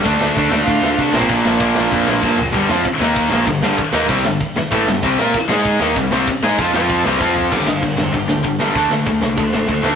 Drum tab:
CC |x---x---x---x---|x---x---x-------|x---x---x---x---|x---x---x---x---|
SD |--o---o---o---o-|--o---o---o-o---|--o---o---o---o-|--o---o---o---o-|
FT |----------------|--------------o-|----------------|----------------|
BD |o---o---o---o--o|o---o---o---o---|o---o---o---o---|o---o---o---o---|

CC |x---x---x---x---|x---x---x-------|x---x---x---x---|x---x---x---x---|
SD |--o---o---o---o-|--o---o---o-o---|--o---o---o---o-|--o---o---o---o-|
FT |----------------|--------------o-|----------------|----------------|
BD |o---o---o---o---|o---o---o---o---|o---o---o---o---|o---o---o---o---|